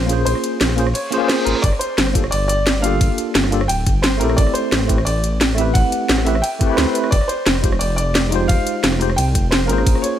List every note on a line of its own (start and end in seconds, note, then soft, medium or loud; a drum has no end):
0.00 0.25 A#1 medium
0.00 0.24 C5 loud
0.06 0.74 A#3 medium
0.06 0.75 C#4 medium
0.06 0.76 F4 medium
0.06 closed hi-hat loud
0.11 0.77 G#4 medium
0.11 0.78 C5 loud
0.25 0.34 A#1 loud
0.25 0.91 C5 loud
0.25 closed hi-hat medium
0.25 ride medium
0.35 cross-stick soft
0.44 closed hi-hat loud
0.61 0.94 A#1 medium
0.61 snare loud
0.61 closed hi-hat medium
0.61 ride medium
0.69 cross-stick soft
0.69 snare soft
0.76 0.85 A#3 medium
0.76 0.86 C#4 medium
0.76 0.86 F4 medium
0.76 0.87 G#4 medium
0.76 0.87 C5 medium
0.76 open hi-hat medium
0.87 cross-stick medium
0.94 1.30 C#5 loud
0.94 closed hi-hat medium
0.94 ride medium
0.94 reverse cymbal medium
1.11 1.16 A#3 medium
1.11 1.18 C#4 medium
1.11 1.20 F4 medium
1.11 1.20 G#4 medium
1.11 1.20 C5 loud
1.11 closed hi-hat loud
1.18 1.61 A#3 medium
1.18 1.62 C#4 medium
1.18 1.63 F4 medium
1.23 1.63 G#4 medium
1.23 1.64 C5 loud
1.28 1.46 C5 medium
1.28 snare loud
1.28 closed hi-hat medium
1.28 ride medium
1.45 1.54 G#1 medium
1.45 1.62 A#4 medium
1.45 closed hi-hat loud
1.55 cross-stick soft
1.62 1.72 G1 loud
1.62 1.67 D5 loud
1.62 kick loud
1.62 closed hi-hat medium
1.62 ride medium
1.72 cross-stick soft
1.79 2.33 C5 loud
1.79 closed hi-hat loud
1.98 2.31 G1 medium
1.98 snare loud
1.98 closed hi-hat medium
1.98 ride medium
2.07 cross-stick soft
2.13 2.22 A#3 medium
2.13 2.23 D4 medium
2.13 2.23 F4 medium
2.13 2.24 G4 medium
2.13 2.24 A4 medium
2.13 kick loud
2.13 closed hi-hat loud
2.24 cross-stick medium
2.31 3.00 G1 loud
2.31 2.47 D5 loud
2.31 closed hi-hat medium
2.31 ride medium
2.48 2.84 D5 loud
2.48 closed hi-hat loud
2.67 snare loud
2.67 closed hi-hat medium
2.67 ride medium
2.80 3.49 A#3 medium
2.80 3.49 D4 medium
2.80 3.50 F4 medium
2.80 3.71 F5 loud
2.80 closed hi-hat loud
2.85 3.51 G4 medium
2.85 3.52 A4 loud
3.01 3.09 G1 loud
3.01 kick loud
3.01 closed hi-hat medium
3.01 ride medium
3.18 closed hi-hat loud
3.35 3.68 G1 medium
3.35 snare loud
3.35 closed hi-hat medium
3.35 ride medium
3.44 cross-stick soft
3.44 snare soft
3.51 3.60 A#3 medium
3.51 3.60 D4 medium
3.51 3.60 F4 medium
3.51 3.61 G4 medium
3.51 3.61 A4 medium
3.51 open hi-hat medium
3.61 cross-stick medium
3.68 3.88 D1 medium
3.68 4.04 G5 loud
3.68 closed hi-hat medium
3.68 ride medium
3.87 4.22 G1 loud
3.87 kick loud
3.87 closed hi-hat medium
4.02 4.21 C5 medium
4.02 snare loud
4.02 closed hi-hat medium
4.02 ride medium
4.17 4.36 A#1 medium
4.17 4.86 A3 medium
4.17 4.87 C4 medium
4.17 4.87 E4 medium
4.17 4.38 A#4 medium
4.17 closed hi-hat loud
4.22 4.88 G4 medium
4.22 4.89 A4 loud
4.30 cross-stick medium
4.37 4.46 A1 loud
4.37 4.53 D5 loud
4.37 kick loud
4.37 closed hi-hat medium
4.37 ride medium
4.47 cross-stick soft
4.54 5.07 C5 loud
4.54 closed hi-hat medium
4.72 5.05 A1 medium
4.72 snare loud
4.72 closed hi-hat medium
4.72 ride medium
4.81 cross-stick soft
4.88 4.97 A3 medium
4.88 4.97 C4 medium
4.88 4.98 E4 medium
4.88 4.98 G4 medium
4.88 4.98 B4 medium
4.88 kick loud
4.88 closed hi-hat medium
4.98 cross-stick medium
5.05 5.74 A1 loud
5.05 5.59 D5 loud
5.05 closed hi-hat medium
5.05 ride medium
5.24 closed hi-hat medium
5.41 snare loud
5.41 closed hi-hat medium
5.41 ride medium
5.55 6.23 A3 medium
5.55 6.24 C4 medium
5.55 6.25 E4 medium
5.55 5.61 E5 medium
5.55 closed hi-hat medium
5.60 6.25 G4 medium
5.60 6.26 B4 loud
5.74 5.83 A1 loud
5.74 6.27 F#5 loud
5.74 kick loud
5.74 closed hi-hat medium
5.74 ride medium
5.92 closed hi-hat medium
6.09 6.42 A1 medium
6.09 snare loud
6.09 closed hi-hat medium
6.09 ride medium
6.18 cross-stick soft
6.18 snare soft
6.25 6.34 A3 medium
6.25 6.34 C4 medium
6.25 6.35 E4 medium
6.25 6.35 G4 medium
6.25 6.36 B4 medium
6.25 6.43 E5 loud
6.25 open hi-hat medium
6.35 cross-stick medium
6.42 6.78 G5 loud
6.42 closed hi-hat medium
6.42 ride medium
6.59 6.65 A3 medium
6.59 6.67 C4 medium
6.59 6.68 E4 medium
6.59 6.69 G4 medium
6.59 6.69 B4 loud
6.59 kick loud
6.59 closed hi-hat medium
6.66 7.10 A3 medium
6.66 7.10 C4 medium
6.66 7.11 E4 medium
6.71 7.12 G4 medium
6.71 7.13 B4 loud
6.76 6.86 D2 medium
6.76 6.93 C5 medium
6.76 snare loud
6.76 closed hi-hat medium
6.76 ride medium
6.93 7.12 B4 medium
6.93 closed hi-hat medium
7.04 cross-stick soft
7.11 7.20 F1 loud
7.11 7.29 D5 loud
7.11 kick loud
7.11 closed hi-hat medium
7.11 ride medium
7.21 cross-stick soft
7.28 7.82 C5 loud
7.28 closed hi-hat medium
7.46 7.79 F1 medium
7.46 snare loud
7.46 closed hi-hat medium
7.46 ride medium
7.55 cross-stick soft
7.62 7.71 G#3 medium
7.62 7.71 D#4 medium
7.62 7.72 F4 medium
7.62 7.72 G4 medium
7.62 7.73 C5 medium
7.62 kick loud
7.62 closed hi-hat medium
7.72 cross-stick medium
7.79 8.48 F1 medium
7.79 7.95 D5 medium
7.79 closed hi-hat medium
7.79 ride medium
7.96 8.50 D5 loud
7.96 closed hi-hat medium
8.15 snare loud
8.15 closed hi-hat medium
8.15 ride medium
8.29 8.97 G#3 medium
8.29 8.98 D#4 medium
8.29 8.99 F4 medium
8.29 closed hi-hat medium
8.34 9.00 G4 medium
8.34 9.00 C5 loud
8.48 8.57 F1 loud
8.48 9.19 F5 loud
8.48 kick loud
8.48 closed hi-hat medium
8.48 ride medium
8.67 closed hi-hat medium
8.84 9.17 F1 medium
8.84 snare loud
8.84 closed hi-hat medium
8.84 ride medium
8.92 cross-stick soft
8.92 snare soft
8.99 9.08 G#3 medium
8.99 9.08 D#4 medium
8.99 9.09 F4 medium
8.99 9.09 G4 medium
8.99 9.10 C5 medium
8.99 open hi-hat medium
9.10 cross-stick medium
9.16 9.37 C2 medium
9.16 9.49 G5 loud
9.16 closed hi-hat medium
9.16 ride medium
9.35 9.71 F1 loud
9.35 kick loud
9.35 closed hi-hat medium
9.51 9.69 C5 medium
9.51 snare loud
9.51 closed hi-hat medium
9.51 ride medium
9.66 9.85 G#1 loud
9.66 10.19 A#3 medium
9.66 10.19 C#4 medium
9.66 10.19 F4 medium
9.66 10.00 A#4 medium
9.66 closed hi-hat medium
9.71 10.19 G#4 medium
9.71 10.19 C5 loud
9.78 cross-stick soft
9.87 9.94 A#1 loud
9.87 kick loud
9.87 closed hi-hat medium
9.87 ride medium
9.95 cross-stick soft
10.02 10.19 C#5 loud
10.02 closed hi-hat loud